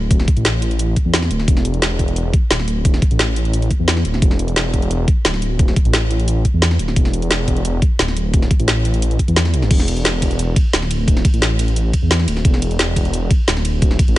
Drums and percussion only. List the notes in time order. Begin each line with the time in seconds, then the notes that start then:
0.11 kick, closed hi-hat
0.20 snare
0.28 kick, closed hi-hat
0.37 closed hi-hat
0.45 snare, closed hi-hat
0.62 closed hi-hat
0.71 closed hi-hat
0.79 closed hi-hat
0.96 kick, closed hi-hat
1.14 snare, closed hi-hat
1.22 snare
1.31 closed hi-hat
1.39 snare
1.48 kick, closed hi-hat
1.57 snare
1.65 closed hi-hat
1.74 closed hi-hat
1.82 snare, closed hi-hat
1.99 kick, closed hi-hat
2.08 closed hi-hat
2.16 closed hi-hat
2.33 kick, closed hi-hat
2.51 snare, closed hi-hat
2.59 snare
2.68 closed hi-hat
2.85 kick, closed hi-hat
2.94 snare
3.02 kick, closed hi-hat
3.11 closed hi-hat
3.19 snare, closed hi-hat
3.36 closed hi-hat
3.45 closed hi-hat
3.53 closed hi-hat
3.62 closed hi-hat
3.71 kick, closed hi-hat
3.88 snare, closed hi-hat
3.97 snare
4.05 closed hi-hat
4.14 snare
4.22 kick, closed hi-hat
4.31 snare
4.39 closed hi-hat
4.48 closed hi-hat
4.56 snare, closed hi-hat
4.74 kick, closed hi-hat
4.82 closed hi-hat
4.91 closed hi-hat
5.08 kick, closed hi-hat
5.25 snare, closed hi-hat
5.34 snare
5.42 closed hi-hat
5.59 kick, closed hi-hat
5.68 snare
5.76 kick, closed hi-hat
5.85 closed hi-hat
5.93 snare, closed hi-hat
6.11 closed hi-hat
6.20 closed hi-hat
6.28 closed hi-hat
6.45 kick, closed hi-hat
6.62 snare, closed hi-hat
6.71 snare
6.79 closed hi-hat
6.88 snare
6.96 kick, closed hi-hat
7.05 snare
7.13 closed hi-hat
7.22 closed hi-hat
7.31 snare, closed hi-hat
7.48 kick, closed hi-hat
7.57 closed hi-hat
7.65 closed hi-hat
7.82 kick, closed hi-hat
7.99 snare, closed hi-hat
8.08 snare
8.17 closed hi-hat
8.34 kick, closed hi-hat
8.42 snare
8.51 kick, closed hi-hat
8.60 closed hi-hat
8.68 snare, closed hi-hat
8.85 closed hi-hat
8.94 closed hi-hat
9.02 closed hi-hat
9.11 closed hi-hat
9.19 kick, closed hi-hat
9.28 closed hi-hat
9.36 snare, closed hi-hat
9.45 snare
9.54 closed hi-hat
9.62 snare
9.71 kick, closed hi-hat, crash
9.80 snare
9.88 closed hi-hat, ride bell
9.97 closed hi-hat
10.05 snare, closed hi-hat
10.22 kick, closed hi-hat, ride bell
10.31 closed hi-hat
10.39 closed hi-hat
10.56 kick, closed hi-hat, ride bell
10.73 snare, closed hi-hat
10.82 snare
10.91 closed hi-hat, ride bell
11.08 kick, closed hi-hat
11.17 snare
11.25 kick, closed hi-hat, ride bell
11.34 closed hi-hat
11.42 snare, closed hi-hat
11.59 closed hi-hat, ride bell
11.68 closed hi-hat
11.76 closed hi-hat
11.93 kick, closed hi-hat, ride bell
12.11 snare, closed hi-hat
12.19 snare
12.28 closed hi-hat, ride bell
12.37 snare
12.45 kick, closed hi-hat
12.54 snare
12.62 closed hi-hat, ride bell
12.71 closed hi-hat
12.79 snare, closed hi-hat
12.96 kick, closed hi-hat, ride bell
13.05 closed hi-hat
13.13 closed hi-hat
13.31 kick, closed hi-hat, ride bell
13.48 snare, closed hi-hat
13.57 snare
13.65 closed hi-hat, ride bell
13.82 kick, closed hi-hat
13.91 snare
13.99 kick, closed hi-hat, ride bell
14.08 closed hi-hat